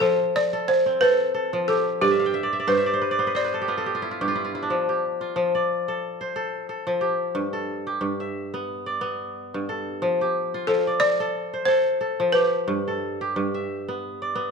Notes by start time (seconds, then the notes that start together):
Already playing: B3 F4 G4 A4
0.00 F3 A4
0.36 D5
0.53 A4
0.68 C5
0.86 C4
1.01 A4 B4
1.34 A4
1.53 F3
1.68 G4 A4
2.01 G2 G4 D5
2.11 E5
2.20 F5
2.26 G5
2.34 E5
2.43 D5
2.53 E5
2.60 D5
2.67 G2 B4 C5
2.77 E5
2.86 D5
2.93 C5
3.02 B4
3.11 D5
3.19 B3 C5
3.27 B4
3.35 C5 D5
3.45 B4
3.54 A4
3.61 G4
3.68 B3 F4
3.78 A4
3.86 G4
3.95 F4
4.02 E4
4.11 F4
4.21 G2 G4
4.28 F4
4.35 E4
4.45 F4
4.55 E4
4.63 D4
4.70 F3
4.89 G4
5.21 F4
5.36 F3
5.55 D5
5.88 A4
6.21 C5
6.36 A4
6.69 A4
6.87 F3
7.01 G4
7.35 G2
7.53 A4
7.87 G4
8.01 G2
8.20 E5
8.54 B3
8.86 D5
9.01 B3
9.54 G2
9.69 A4
10.02 F3
10.21 G4
10.54 F4
10.67 F3 A4
10.87 D5
11.00 D5
11.20 A4
11.54 C5
11.65 A4 C5
12.01 A4
12.20 F3
12.32 G4 B4
12.68 G2
12.88 A4
13.21 G4
13.36 G2
13.54 E5
13.88 B3
14.22 D5
14.35 B3